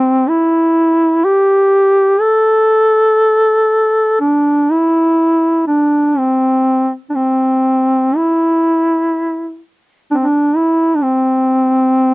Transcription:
0.00 0.31 C4 medium
0.29 1.26 E4 medium
1.25 2.22 G4 medium
2.21 4.19 A4 medium
4.21 4.72 D4 medium
4.71 5.67 E4 medium
5.67 6.19 D4 medium
6.18 6.93 C4 medium
7.10 7.17 D4 medium
7.15 8.18 C4 medium
8.17 9.61 E4 medium
10.11 10.25 C4 medium
10.11 10.15 D4 medium
10.24 10.58 D4 medium
10.57 10.97 E4 medium
10.96 11.04 D4 medium
11.03 12.14 C4 medium

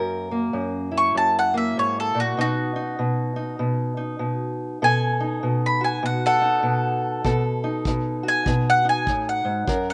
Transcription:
0.00 0.52 F#2 medium
0.00 0.30 A#3 medium
0.00 2.34 A#4 medium
0.00 0.11 F#5 medium
0.31 1.53 A#3 medium
0.53 1.14 F#2 medium
0.91 2.34 E4 medium
0.97 1.16 C#6 medium
1.15 1.76 F#2 medium
1.15 1.36 A5 medium
1.39 1.57 F#5 medium
1.54 2.37 A#3 medium
1.54 1.76 E5 medium
1.77 2.14 G#2 medium
1.77 1.97 C#5 medium
2.00 2.18 A4 medium
2.15 2.37 A#2 medium
2.20 2.38 F#4 medium
2.37 2.98 B2 medium
2.37 2.75 D#4 medium
2.37 3.57 F#4 medium
2.76 3.36 D#4 medium
2.99 3.59 B2 medium
3.36 3.97 D#4 medium
3.59 4.19 B2 medium
3.97 4.85 D#4 medium
4.19 4.82 B2 medium
4.82 5.42 B2 medium
4.82 7.22 A4 medium
4.82 5.61 G#5 loud
5.20 6.40 D#4 medium
5.43 6.02 B2 medium
5.66 5.84 B5 medium
5.81 8.23 F#4 medium
5.81 6.03 G#5 medium
6.03 6.61 B2 medium
6.03 6.24 F#5 medium
6.26 7.42 A4 medium
6.26 7.43 F#5 medium
6.42 7.22 D#4 medium
6.63 7.21 B2 medium
7.24 7.85 B2 medium
7.24 9.66 A4 medium
7.24 kick medium
7.64 8.84 D#4 medium
7.85 8.46 B2 medium
7.85 kick medium
8.23 9.65 F#4 medium
8.28 8.66 G#5 loud
8.46 9.07 B2 medium
8.46 kick medium
8.70 8.88 F#5 medium
8.85 9.66 D#4 medium
8.89 9.27 G#5 medium
9.07 9.44 A2 medium
9.07 kick medium
9.29 9.87 F#5 medium
9.45 9.67 G#2 medium
9.67 9.94 F#2 medium
9.67 9.94 A#4 medium
9.67 kick medium
9.90 9.94 F#5 medium

